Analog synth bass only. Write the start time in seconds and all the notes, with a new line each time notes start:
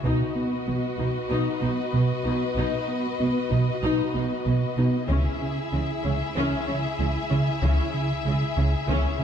0.04 B2
0.36 B3
0.68 B3
0.99 B2
1.30 B2
1.62 B3
1.93 B2
2.25 B3
2.56 B2
2.88 B3
3.20 B3
3.51 B2
3.83 B2
4.14 B3
4.46 B2
4.78 B3
5.10 C#2
5.41 C#3
5.73 C#3
6.04 C#2
6.36 C#2
6.68 C#3
6.99 C#2
7.31 C#3
7.62 C#2
7.94 C#3
8.25 C#3
8.57 C#2
8.88 C#2
9.20 C#3